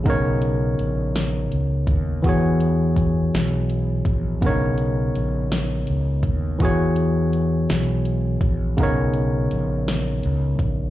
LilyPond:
<<
  \new Staff \with { instrumentName = "Tine electric piano" } { \time 6/8 \key b \major \tempo 4. = 55 <cis b dis' ais' cis''>2. | <e b fis' gis' cis''>2. | <cis b d' dis' ais' cis''>2. | <e b fis' gis' cis''>2. |
<cis b dis' ais' cis''>2. | }
  \new Staff \with { instrumentName = "Fretless electric bass" } { \clef bass \time 6/8 \key b \major b,,4 ais,,4 cis,8 dis,8 | e,4. b,,4 ais,,8 | b,,4 ais,,4 cis,8 dis,8 | e,4. b,,4 ais,,8 |
b,,4 ais,,4 cis,8 ais,,8 | }
  \new DrumStaff \with { instrumentName = "Drums" } \drummode { \time 6/8 <hh bd>8 hh8 hh8 <hh sn>8 hh8 <hh bd>8 | <hh bd>8 hh8 <hh bd>8 <hh sn>8 hh8 <hh bd>8 | <hh bd>8 hh8 hh8 <hh sn>8 hh8 <hh bd>8 | <hh bd>8 hh8 hh8 <hh sn>8 hh8 <hh bd>8 |
<hh bd>8 hh8 hh8 <hh sn>8 hh8 <hh bd>8 | }
>>